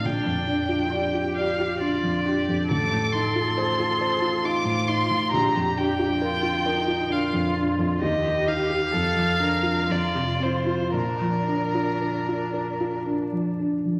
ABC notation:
X:1
M:3/4
L:1/16
Q:1/4=67
K:Bb
V:1 name="Violin"
g6 f2 d4 | d'2 c'6 d'2 c'2 | b2 g6 f2 z2 | e2 f6 d2 c2 |
B8 z4 |]
V:2 name="Cello"
D4 G4 F2 G2 | A8 F4 | G4 F2 E2 F4 | G4 A2 B2 F4 |
D8- D2 z2 |]
V:3 name="Grand piano"
B,,, F,, D F d F d F D F,, D F,, | A,,, A,, E F c F c F E A,, E A,, | B,,, F,, D F B F B F D F,, D F,, | E,, E, E G F,, F, D F F,, C, C F |
B,, F, D F B F B F D F, D F, |]